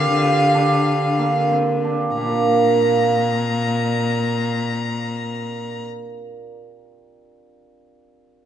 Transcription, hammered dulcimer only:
0.00 1.18 A#3 medium
0.00 1.51 C4 medium
0.00 0.54 D4 medium
0.00 0.22 F4 medium
0.00 3.05 G4 medium
0.23 2.25 F4 medium
0.55 1.84 D4 medium
1.18 2.17 A#3 medium
1.52 5.52 C4 medium
1.84 2.21 D4 soft
2.17 6.49 A#3 soft
2.21 6.54 D4 soft
2.21 6.58 F4 soft
2.29 6.62 A#4 soft

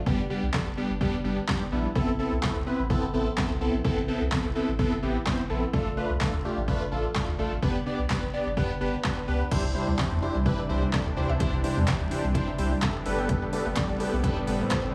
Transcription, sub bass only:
0.06 0.29 G1 loud
0.43 0.50 B1 loud
0.66 0.73 A1 medium
0.90 1.05 G1 medium
1.24 1.39 G1 medium
1.72 1.86 A#1 medium
1.95 2.18 A1 loud
2.31 2.38 B1 medium
2.55 2.62 C2 medium
2.79 2.94 A1 loud
3.14 3.28 A1 medium
3.50 3.57 B1 medium
3.61 3.69 B1 loud
3.73 3.80 A#1 medium
3.85 4.07 A1 loud
4.21 4.28 C2 medium
4.44 4.51 B1 medium
4.68 4.83 A1 medium
5.03 5.17 A1 medium
5.50 5.65 A#1 loud
5.74 5.96 A1 loud
6.09 6.16 C2 medium
6.33 6.40 D2 medium
6.57 6.72 A1 medium
6.92 7.06 A1 medium
7.28 7.35 D2 medium
7.39 7.47 A1 loud
7.51 7.58 G#1 medium
7.63 7.85 G1 loud
7.99 8.06 B1 medium
8.22 8.29 A1 medium
8.46 8.61 G1 medium
8.81 8.95 G1 medium
9.28 9.43 C#2 loud
9.51 9.74 C2 loud
9.88 9.95 D2 medium
10.11 10.18 E2 medium
10.35 10.50 C2 medium
10.69 10.84 C2 medium
11.06 11.13 D2 medium
11.17 11.25 D2 loud
11.29 11.36 C#2 medium
11.40 11.63 C2 loud
11.77 11.84 E2 medium
12.00 12.07 D2 medium
12.24 12.39 C2 medium
12.59 12.73 C2 medium
13.06 13.43 G1 loud
13.65 13.72 G1 medium
13.89 13.96 A1 medium
14.13 14.28 B1 medium
14.47 14.62 G1 medium
14.84 14.91 G1 medium

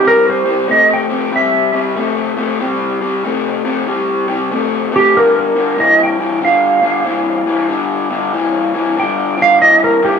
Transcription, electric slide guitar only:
0.07 0.27 A#4 medium
0.30 0.69 C5 medium
0.71 0.90 D#5 medium
0.94 1.33 G5 medium
1.36 2.58 E5 medium
4.96 5.16 G4 medium
5.17 5.37 A#4 medium
5.39 5.79 A#4 medium
5.80 6.00 D#5 medium
6.03 6.43 G5 medium
6.45 7.68 F5 medium
9.00 9.40 G5 medium
9.42 9.61 F5 medium
9.62 9.83 D#5 medium
9.84 10.04 A#4 medium
10.05 10.19 G4 medium

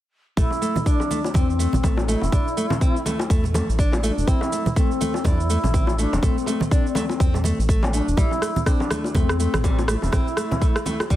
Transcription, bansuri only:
0.37 0.87 E4 loud
0.86 1.34 D4 loud
1.35 2.09 C4 loud
2.08 3.54 E4 loud
4.04 4.10 E4 medium
4.09 4.29 D4 loud
4.27 4.76 E4 loud
4.77 5.27 C4 medium
5.25 6.00 E4 loud
5.98 6.24 D4 medium
6.23 6.70 C4 loud
6.71 7.65 C4 medium
7.93 8.18 D4 loud
8.17 8.67 E4 loud
8.66 9.16 D4 loud
9.15 9.90 C4 medium
9.88 9.94 G4 medium
9.93 11.16 E4 loud

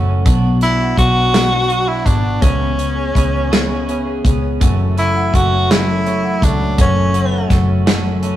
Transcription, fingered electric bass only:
0.00 0.24 F#1 loud
0.26 0.94 B1 loud
0.97 2.02 B1 medium
2.06 2.40 G#1 medium
2.42 3.11 C#2 loud
3.15 4.21 C#2 medium
4.25 4.59 C#2 medium
4.61 5.30 F#1 loud
5.34 6.38 F#1 medium
6.42 6.76 C#2 medium
6.78 7.47 F#1 loud
7.50 8.36 F#1 medium

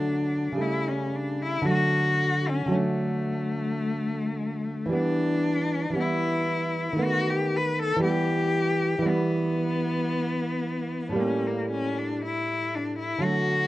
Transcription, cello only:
0.00 0.62 D4 medium
0.61 0.89 E4 medium
0.88 1.17 C#4 medium
1.15 1.43 D4 medium
1.41 1.69 E4 loud
1.70 2.50 F#4 loud
2.49 2.77 C#4 medium
2.75 4.93 A3 medium
4.94 6.02 D4 loud
6.01 7.05 E4 medium
7.04 7.31 F#4 loud
7.30 7.58 G4 medium
7.56 7.81 B4 loud
7.79 8.04 A4 loud
8.04 9.11 G4 loud
9.09 11.22 B3 medium
11.20 11.48 C#4 medium
11.46 11.71 A#3 medium
11.71 12.00 C#4 medium
11.98 12.25 D4 medium
12.25 12.76 E4 medium
12.75 12.99 D4 medium
12.99 13.25 E4 medium
13.24 13.67 F#4 loud

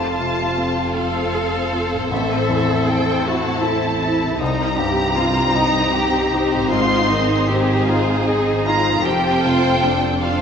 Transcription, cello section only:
0.00 0.96 F4 soft
0.96 2.09 A4 soft
2.11 3.24 A4 medium
3.26 3.64 F#4 medium
3.64 4.00 E4 soft
4.01 4.39 E4 soft
4.40 4.79 D#4 medium
4.78 5.17 G4 medium
5.16 5.55 F4 medium
5.55 5.94 D#4 medium
5.93 6.31 G4 medium
6.33 6.71 G4 medium
6.71 7.10 F4 medium
7.09 7.48 D#4 medium
7.48 7.87 G4 medium
7.87 8.26 F4 soft
8.26 8.65 D#4 soft
8.66 9.05 F4 soft
9.05 9.44 G4 medium
9.44 9.83 F4 medium
9.84 10.41 D4 medium

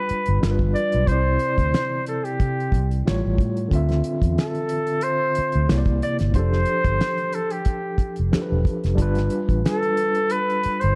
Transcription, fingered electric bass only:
0.11 muted fingered electric bass stroke soft
0.28 0.41 G1 medium
0.43 0.58 G1 medium
0.60 0.73 G1 medium
0.94 1.07 B1 medium
1.09 1.37 C2 medium
1.59 1.72 D2 medium
2.41 2.75 C3 medium
2.73 3.01 C2 medium
3.09 3.23 A1 medium
3.26 3.38 A1 medium
3.40 3.68 A2 medium
3.73 4.01 D2 medium
4.23 4.36 E2 medium
5.38 muted fingered electric bass stroke soft
5.56 5.68 D2 medium
5.71 5.85 C2 medium
5.87 6.00 C2 medium
6.21 6.34 G1 medium
6.35 6.63 F1 loud
6.86 6.99 G1 medium
7.99 muted fingered electric bass stroke soft
8.19 8.32 F1 medium
8.52 8.65 E1 medium
8.84 8.97 F1 medium
8.99 9.28 G1 loud
9.49 9.63 A1 medium
10.66 muted fingered electric bass stroke soft
10.84 10.95 G1 medium

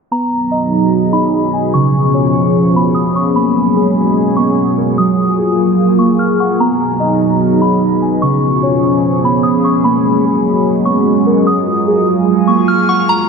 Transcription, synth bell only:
0.12 1.09 A#5 medium
1.13 1.32 B5 medium
1.74 2.71 C#6 medium
2.76 2.95 B5 medium
2.95 3.14 D#6 medium
3.16 3.35 C#6 medium
3.36 4.33 B5 medium
4.37 4.56 C#6 medium
4.98 5.95 D#6 medium
5.99 6.18 C#6 medium
6.19 6.39 F6 medium
6.40 6.59 C#6 medium
6.60 7.58 A#5 medium
7.62 7.81 B5 medium
8.22 9.19 C#6 loud
9.25 9.44 B5 medium
9.43 9.63 D#6 medium
9.64 9.84 C#6 medium
9.84 10.82 B5 medium
10.85 11.05 C#6 medium
11.47 12.44 D#6 medium
12.47 12.67 C#6 medium
12.68 12.87 F6 medium
12.89 13.08 C#6 medium
13.09 13.29 A#5 medium

